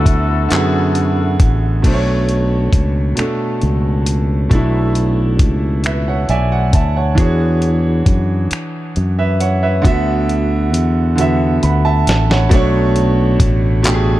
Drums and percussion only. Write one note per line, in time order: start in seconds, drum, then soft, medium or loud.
0.06 kick medium
0.06 closed hi-hat medium
0.51 clap loud
0.51 closed hi-hat medium
0.95 closed hi-hat soft
1.40 kick loud
1.40 closed hi-hat medium
1.84 kick medium
1.84 closed hi-hat medium
1.84 crash medium
2.29 closed hi-hat soft
2.73 kick medium
2.73 closed hi-hat medium
3.17 finger snap medium
3.17 closed hi-hat medium
3.62 closed hi-hat soft
4.06 closed hi-hat medium
4.51 kick medium
4.51 closed hi-hat medium
4.95 closed hi-hat soft
5.39 kick medium
5.39 closed hi-hat medium
5.84 finger snap medium
5.84 closed hi-hat medium
6.29 closed hi-hat soft
6.73 kick medium
6.73 closed hi-hat medium
7.18 kick medium
7.18 closed hi-hat medium
7.62 closed hi-hat soft
8.06 kick medium
8.06 closed hi-hat medium
8.51 finger snap loud
8.51 closed hi-hat medium
8.96 closed hi-hat soft
9.40 closed hi-hat medium
9.85 kick loud
9.85 closed hi-hat medium
10.29 closed hi-hat soft
10.74 closed hi-hat medium
11.18 closed hi-hat medium
11.63 closed hi-hat soft
12.07 snare loud
12.07 closed hi-hat medium
12.31 snare medium
12.51 kick loud
12.51 closed hi-hat medium
12.96 closed hi-hat medium
13.40 kick medium
13.40 closed hi-hat medium
13.84 clap loud
13.84 closed hi-hat medium